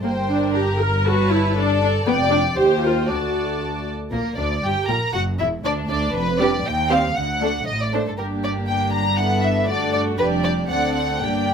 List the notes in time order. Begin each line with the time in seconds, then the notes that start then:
0.02 G1 G2 A#3 A#4 C5 G5
0.29 D4
0.54 G4 A#4 A#5
0.81 A#4
1.04 F#4 B4 C#5 A5
1.31 E4
1.56 D4 A4 D5 A5
1.82 D4
2.06 F1 F2 B3 D5 G5
2.31 D4
2.57 D#2 G4 C5 G5
2.83 F4 A#4
3.08 D2 F#4 A4 D5 A5
4.11 A#1 A#2 A#3 A#4
4.37 D2 D4 D5
4.63 G1 G2 G4 G5
4.88 A#1 A#2 A#4 A#5
5.13 F#1 F#2 F#4 F#5
5.39 E1 E2 E4 E5
5.64 D2 D4 D5
5.89 D2 D4 D5
6.14 F1 F2 B4
6.39 G3 D4 G4 B4 D5
6.64 D#2 G5
6.89 G3 C4 G4 C5 F5
7.15 D2 F#5
7.41 A3 D4 A4
7.66 A1 A2 D#5
7.81 D5
7.93 A3 D4 A4 C5
8.07 A4
8.17 G1 G2 A#3 D4 G4 A#4
8.43 D5
8.68 D4 G5
8.93 A#5
9.17 B3 E4 A4 F#5
9.42 E5
9.68 A3 D4 F#4 A4 D5
9.93 D5
10.18 F1 F2 G3 D4 G4 B4 D5
10.44 D5
10.69 D2 C4 D4 A4 D5 F#5
10.95 F#5
11.21 G1 G2 A#3 D4 G4 D5 G5